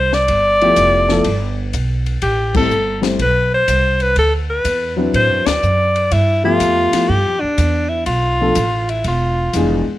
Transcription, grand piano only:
0, 0, Header, 1, 2, 480
1, 0, Start_track
1, 0, Tempo, 486618
1, 281, Time_signature, 4, 2, 24, 8
1, 9849, End_track
2, 0, Start_track
2, 0, Title_t, "Grand piano"
2, 0, Program_c, 0, 0
2, 609, Note_on_c, 0, 53, 76
2, 612, Note_on_c, 0, 57, 68
2, 612, Note_on_c, 0, 59, 67
2, 617, Note_on_c, 0, 64, 68
2, 623, Note_on_c, 0, 67, 83
2, 1052, Note_off_c, 0, 53, 0
2, 1053, Note_off_c, 0, 57, 0
2, 1053, Note_off_c, 0, 59, 0
2, 1055, Note_off_c, 0, 64, 0
2, 1059, Note_off_c, 0, 67, 0
2, 1086, Note_on_c, 0, 57, 67
2, 1089, Note_on_c, 0, 59, 68
2, 1090, Note_on_c, 0, 53, 73
2, 1094, Note_on_c, 0, 64, 67
2, 1097, Note_on_c, 0, 69, 80
2, 1225, Note_off_c, 0, 57, 0
2, 1226, Note_off_c, 0, 59, 0
2, 1227, Note_off_c, 0, 53, 0
2, 1229, Note_off_c, 0, 64, 0
2, 1230, Note_off_c, 0, 69, 0
2, 2513, Note_on_c, 0, 55, 69
2, 2521, Note_on_c, 0, 60, 67
2, 2523, Note_on_c, 0, 57, 68
2, 2525, Note_on_c, 0, 69, 77
2, 2527, Note_on_c, 0, 64, 63
2, 2657, Note_off_c, 0, 55, 0
2, 2661, Note_off_c, 0, 57, 0
2, 2661, Note_off_c, 0, 60, 0
2, 2662, Note_off_c, 0, 69, 0
2, 2663, Note_off_c, 0, 64, 0
2, 2974, Note_on_c, 0, 55, 64
2, 2981, Note_on_c, 0, 57, 53
2, 2987, Note_on_c, 0, 72, 64
2, 2989, Note_on_c, 0, 64, 55
2, 2990, Note_on_c, 0, 60, 55
2, 3127, Note_off_c, 0, 55, 0
2, 3130, Note_off_c, 0, 57, 0
2, 3133, Note_off_c, 0, 72, 0
2, 3134, Note_off_c, 0, 60, 0
2, 3134, Note_off_c, 0, 64, 0
2, 4897, Note_on_c, 0, 54, 69
2, 4906, Note_on_c, 0, 60, 58
2, 4908, Note_on_c, 0, 62, 60
2, 4913, Note_on_c, 0, 64, 62
2, 4917, Note_on_c, 0, 71, 76
2, 5512, Note_off_c, 0, 54, 0
2, 5516, Note_off_c, 0, 60, 0
2, 5517, Note_off_c, 0, 62, 0
2, 5520, Note_off_c, 0, 64, 0
2, 5522, Note_off_c, 0, 71, 0
2, 6349, Note_on_c, 0, 57, 74
2, 6350, Note_on_c, 0, 53, 78
2, 6357, Note_on_c, 0, 59, 71
2, 6362, Note_on_c, 0, 76, 73
2, 6368, Note_on_c, 0, 67, 81
2, 6800, Note_off_c, 0, 57, 0
2, 6801, Note_off_c, 0, 53, 0
2, 6804, Note_off_c, 0, 59, 0
2, 6806, Note_off_c, 0, 76, 0
2, 6810, Note_off_c, 0, 67, 0
2, 6833, Note_on_c, 0, 53, 66
2, 6838, Note_on_c, 0, 57, 58
2, 6841, Note_on_c, 0, 59, 60
2, 6842, Note_on_c, 0, 64, 60
2, 6850, Note_on_c, 0, 67, 71
2, 6976, Note_off_c, 0, 53, 0
2, 6979, Note_off_c, 0, 57, 0
2, 6980, Note_off_c, 0, 59, 0
2, 6981, Note_off_c, 0, 64, 0
2, 6985, Note_off_c, 0, 67, 0
2, 8297, Note_on_c, 0, 53, 66
2, 8297, Note_on_c, 0, 62, 58
2, 8299, Note_on_c, 0, 57, 58
2, 8299, Note_on_c, 0, 59, 60
2, 8310, Note_on_c, 0, 69, 68
2, 8430, Note_off_c, 0, 53, 0
2, 8430, Note_off_c, 0, 62, 0
2, 8431, Note_off_c, 0, 57, 0
2, 8431, Note_off_c, 0, 59, 0
2, 8436, Note_off_c, 0, 69, 0
2, 9421, Note_on_c, 0, 52, 67
2, 9423, Note_on_c, 0, 59, 60
2, 9430, Note_on_c, 0, 62, 61
2, 9431, Note_on_c, 0, 56, 61
2, 9434, Note_on_c, 0, 68, 73
2, 9701, Note_off_c, 0, 52, 0
2, 9702, Note_off_c, 0, 59, 0
2, 9706, Note_off_c, 0, 56, 0
2, 9706, Note_off_c, 0, 62, 0
2, 9708, Note_off_c, 0, 68, 0
2, 9849, End_track
0, 0, End_of_file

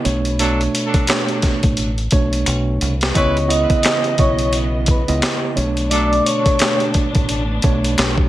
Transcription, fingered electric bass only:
0, 0, Header, 1, 2, 480
1, 0, Start_track
1, 0, Tempo, 689655
1, 276, Time_signature, 4, 2, 24, 8
1, 5768, End_track
2, 0, Start_track
2, 0, Title_t, "Fingered electric bass"
2, 0, Program_c, 0, 33
2, 40, Note_on_c, 0, 35, 99
2, 465, Note_off_c, 0, 35, 0
2, 1140, Note_on_c, 0, 33, 92
2, 1439, Note_off_c, 0, 33, 0
2, 1480, Note_on_c, 0, 35, 87
2, 1691, Note_off_c, 0, 35, 0
2, 1721, Note_on_c, 0, 35, 98
2, 1932, Note_off_c, 0, 35, 0
2, 1962, Note_on_c, 0, 36, 83
2, 2173, Note_off_c, 0, 36, 0
2, 2198, Note_on_c, 0, 37, 113
2, 2538, Note_off_c, 0, 37, 0
2, 2917, Note_on_c, 0, 35, 100
2, 3512, Note_off_c, 0, 35, 0
2, 3543, Note_on_c, 0, 37, 99
2, 3627, Note_off_c, 0, 37, 0
2, 3880, Note_on_c, 0, 35, 100
2, 4305, Note_off_c, 0, 35, 0
2, 4980, Note_on_c, 0, 33, 94
2, 5279, Note_off_c, 0, 33, 0
2, 5319, Note_on_c, 0, 35, 90
2, 5531, Note_off_c, 0, 35, 0
2, 5560, Note_on_c, 0, 35, 95
2, 5768, Note_off_c, 0, 35, 0
2, 5768, End_track
0, 0, End_of_file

